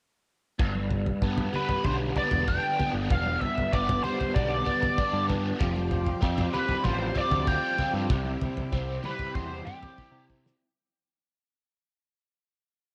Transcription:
0.59 1.11 G1 medium
0.59 2.16 G2 medium
0.59 kick loud
0.59 floor tom medium
0.75 high conga medium
0.91 floor tom medium
1.06 floor tom medium
1.22 1.47 G2 medium
1.22 2.16 B3 medium
1.22 kick medium
1.38 floor tom medium
1.38 mid tom medium
1.53 4.04 G3 medium
1.53 1.85 B4 medium
1.53 low conga medium
1.69 floor tom medium
1.84 2.10 B1 medium
1.84 3.42 D3 medium
1.84 1.94 C5 medium
1.84 kick medium
1.84 floor tom medium
2.16 2.78 B3 medium
2.16 2.49 D5 medium
2.16 floor tom medium
2.31 2.57 E1 medium
2.31 floor tom medium
2.31 high conga medium
2.47 4.04 D4 medium
2.47 2.91 G5 medium
2.47 kick loud
2.79 3.72 B3 medium
2.79 floor tom medium
2.79 low conga medium
2.93 3.07 G1 medium
3.10 3.36 E1 medium
3.10 4.66 G2 medium
3.10 3.40 F5 medium
3.10 kick loud
3.10 floor tom medium
3.26 high conga medium
3.41 3.73 E5 medium
3.41 floor tom medium
3.58 floor tom medium
3.72 3.98 G1 medium
3.72 4.64 B3 medium
3.72 4.03 D5 medium
3.72 kick medium
3.89 floor tom medium
3.89 mid tom medium
4.04 5.62 G3 medium
4.04 4.34 C5 medium
4.04 low conga medium
4.21 floor tom medium
4.35 4.61 B1 medium
4.35 5.59 D3 medium
4.35 5.25 D5 medium
4.35 kick loud
4.35 floor tom medium
4.65 5.28 B3 medium
4.65 floor tom medium
4.83 floor tom medium
4.83 high conga medium
4.98 5.60 D4 medium
4.98 kick loud
5.13 5.51 G2 medium
5.29 5.60 B3 medium
5.29 floor tom medium
5.59 6.11 F1 medium
5.59 6.83 F3 medium
5.59 8.08 G3 medium
5.59 10.58 C4 medium
5.59 8.09 F4 medium
5.59 10.58 G4 medium
5.59 kick loud
5.59 floor tom medium
5.76 high conga medium
5.91 floor tom medium
6.07 floor tom medium
6.21 6.48 F2 loud
6.21 7.14 C4 medium
6.21 kick loud
6.38 floor tom medium
6.38 mid tom medium
6.53 9.03 G3 medium
6.53 6.84 B4 medium
6.53 low conga medium
6.69 floor tom medium
6.84 7.10 A1 medium
6.84 8.09 F3 medium
6.84 7.17 C5 medium
6.84 kick loud
6.84 floor tom medium
7.14 7.78 C4 medium
7.14 7.49 D5 medium
7.14 floor tom medium
7.31 7.57 D2 loud
7.31 floor tom medium
7.31 high conga medium
7.47 8.09 F4 medium
7.47 7.91 G5 medium
7.47 kick medium
7.78 8.72 C4 medium
7.78 floor tom medium
7.78 low conga medium
7.94 8.06 G2 medium
8.09 8.35 C2 medium
8.09 9.67 C3 medium
8.09 10.58 G3 medium
8.09 10.58 E4 medium
8.09 kick loud
8.09 floor tom medium
8.25 high conga medium
8.41 floor tom medium
8.41 low conga medium
8.57 floor tom medium
8.57 high conga soft
8.72 8.98 C2 medium
8.72 9.65 C4 medium
8.72 kick medium
9.03 10.60 G3 medium
9.03 9.35 B4 medium
9.03 high conga medium
9.03 low conga medium
9.19 floor tom medium
9.35 9.60 E2 medium
9.35 10.60 E3 medium
9.35 9.67 C5 loud
9.35 kick medium
9.35 floor tom medium
9.65 10.29 C4 medium
9.65 10.24 G4 medium
9.65 mid tom medium
9.82 floor tom medium
9.82 high conga medium
9.98 10.61 E4 medium
9.98 kick medium
9.98 high tom soft
9.98 low conga medium
10.12 10.51 C3 medium
10.29 10.61 C4 medium
10.29 kick medium
10.29 low conga medium
10.46 snare medium

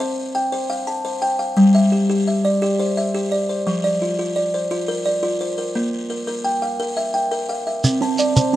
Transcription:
0.00 0.35 C5 medium
0.00 0.18 A5 medium
0.35 0.87 G5 medium
0.52 0.87 C5 medium
0.70 1.22 F5 medium
0.87 1.40 A5 medium
1.05 1.40 C5 medium
1.22 1.74 G5 medium
1.39 1.74 F5 medium
1.57 1.92 G3 medium
1.75 2.26 E5 medium
1.92 2.08 G4 medium
2.10 2.44 G4 medium
2.28 2.79 E5 medium
2.45 2.97 D5 medium
2.62 2.97 G4 medium
2.80 3.32 C5 medium
2.97 3.49 E5 medium
3.15 3.49 G4 medium
3.32 3.83 D5 medium
3.49 3.84 C5 medium
3.67 4.01 F3 medium
3.84 4.35 D5 medium
4.02 4.18 F4 medium
4.19 4.53 F4 medium
4.36 4.88 D5 medium
4.54 5.06 C5 medium
4.71 5.06 F4 medium
4.88 5.40 A#4 medium
5.06 5.58 D5 medium
5.23 5.58 F4 medium
5.41 5.93 C5 medium
5.58 5.93 A#4 medium
5.75 6.10 A#3 medium
6.10 6.26 A#4 medium
6.27 6.62 A#4 medium
6.44 6.97 G5 medium
6.62 7.14 F5 medium
6.80 7.14 A#4 medium
6.97 7.49 E5 medium
7.14 7.66 G5 medium
7.31 7.66 A#4 medium
7.49 8.01 F5 medium
7.67 8.01 E5 medium
7.84 8.19 C4 medium
7.84 shekere medium
8.01 8.36 C4 medium
8.01 8.53 A5 medium
8.18 8.56 D5 medium
8.18 shekere medium
8.36 8.56 C5 medium
8.36 8.56 A5 medium
8.36 shekere medium

